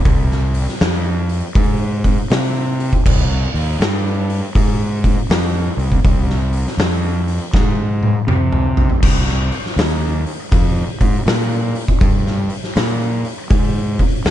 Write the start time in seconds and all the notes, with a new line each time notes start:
0.05 C2, kick, open hi-hat
0.31 snare
0.54 open hi-hat
0.69 snare
0.80 F2, snare, open hi-hat
1.29 open hi-hat
1.55 G#2, kick, open hi-hat
2.04 kick, open hi-hat
2.30 C3, snare, open hi-hat
2.80 open hi-hat
2.93 kick
3.06 C2, kick, crash
3.54 D#2, open hi-hat
3.79 G2, snare, open hi-hat
4.30 open hi-hat
4.55 G#2, kick, open hi-hat
5.04 kick, open hi-hat
5.29 F2, snare, open hi-hat
5.77 C2, open hi-hat
5.92 kick
6.04 C2, kick, open hi-hat
6.30 snare
6.53 open hi-hat
6.67 snare
6.77 F2, snare, open hi-hat
7.28 open hi-hat
7.53 G#2, kick, snare
8.03 high tom
8.27 C3, mid tom
8.52 mid tom
8.77 floor tom
8.90 floor tom
9.02 C2, kick, crash
9.29 snare
9.52 open hi-hat
9.66 snare
9.76 D#2, snare, open hi-hat
10.26 open hi-hat
10.51 F2, kick, open hi-hat
11.01 G#2, kick, open hi-hat
11.26 A#2, snare, open hi-hat
11.75 open hi-hat
11.88 kick
12.01 G2, kick, open hi-hat
12.27 snare
12.50 open hi-hat
12.64 snare
12.76 A#2, snare, open hi-hat
13.25 open hi-hat
13.50 G#2, kick, open hi-hat
13.99 kick, open hi-hat
14.25 D#2, snare, open hi-hat